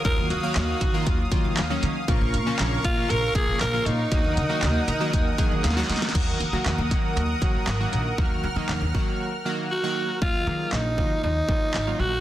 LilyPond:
<<
  \new Staff \with { instrumentName = "Supersaw synth" } { \time 4/4 \key ees \minor \tempo 4 = 118 << { ees'''1 | des'''1 | ees'''1 | ees'''1 |
f'''1 | r1 | } \\ { <ges f''>1 | <bes' f''>1 | <bes' ges''>1 | <bes' ges''>1~ |
<bes' ges''>1 | r1 | } >> }
  \new Staff \with { instrumentName = "Alto saxophone" } { \time 4/4 \key ees \minor bes'8 ges'4. r2 | r4. f'8 bes'8 aes'8 bes'8 ees'8~ | ees'2. r4 | r1 |
r2. ges'4 | f'4 ees'4 ees'4. ges'8 | }
  \new Staff \with { instrumentName = "Synth keys" } { \time 4/4 \key ees \minor << { r1 | r1 | r4. bes''8 aes''8 ges''8 f''8 ees''8 | r1 |
r1 | r1 | } \\ { <ees ges bes f'>8 r16 <ees ges bes f''>8. r16 <ees ges bes f'>8 r16 <ees ges bes f'>8 r16 <ees ges bes des'>8 r16 | <des f bes f'>8 r16 <des f bes des'>8. r16 <des f bes f'>8 r16 <des f bes f'>8 r16 <des f bes f'>8 r16 | <ees ges bes ges'>8 r16 <ees ges bes ges'>8. r16 <ees ges bes ges'>8 r16 <ees ges bes aes'>8 r16 <ees ges bes ges'>8 r16 | <ees ges bes ges'>8 r16 <ees ges bes ges'>8 r16 <ees ges bes ges'>8. r16 <ees ges bes ges'>8 r16 <ees ges bes ges'>8 r16 |
<ees ges bes ges'>8 r16 <ees ges bes ees'>8 r16 <ees ges bes ges'>8. r16 <ees ges bes ges'>8 r16 <ees ges bes ges'>8 r16 | <ees ges bes f'>16 r16 <ees ges bes aes'>8. r16 <ees ges bes f'>8. r16 <ees ges bes f'>8 r16 <ees ges bes f'>8 r16 | } >> }
  \new Staff \with { instrumentName = "Upright bass" } { \clef bass \time 4/4 \key ees \minor ees,16 ees,16 ees8 ees,8 ees8 ees,8 ees16 ees16 ees,8 ees8 | bes,,16 bes,,16 bes,8 bes,,8 bes,8 bes,,8 bes,16 bes,16 bes,,8 bes,8 | ees,16 ees,16 ees8 ees,8 ees8 ees,8 ees16 ees16 ees,8 ees8 | ees,8 ees16 ees16 ees,16 ees,16 ees8 ees,8 ees16 ees16 aes,,8 bes,,8 |
ees,8 ees16 ees16 ees,16 ees,16 ees8 r2 | ees,8 ees8 bes,,8 ees8 ees,8 ees8 aes,,8 bes,,8 | }
  \new DrumStaff \with { instrumentName = "Drums" } \drummode { \time 4/4 <hh bd>8 hh8 <hc hh sn>8 <hh bd>8 <hh bd>8 <hh bd>8 <hc hh sn>8 hh8 | <hh bd>8 hh8 <hc hh sn>8 <hh bd>8 hh8 <hh bd>8 <hc hh sn>8 hh8 | <hh bd>8 hh8 <hc hh sn>8 hh8 <hh bd>8 <hh bd>8 <hh sn>32 sn32 sn32 sn32 <hho sn>32 sn32 sn32 sn32 | <cymc hh bd>8 hh8 <hc hh sn>8 <hh bd>8 hh8 <hh bd>8 <hc hh sn>8 hh8 |
bd4 <hc sn>8 bd8 r4 r4 | bd4 <hc sn>8 bd8 r8 bd8 <hc sn>4 | }
>>